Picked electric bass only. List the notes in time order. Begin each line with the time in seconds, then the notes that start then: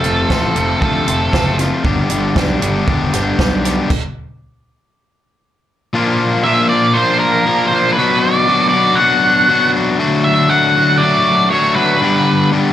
0.04 F1
0.30 A1
0.56 F1
0.82 D2
1.08 F1
1.34 F#1
1.84 G1
2.11 G1
2.36 B1
2.62 G1
2.88 E1
3.14 G1
3.39 B1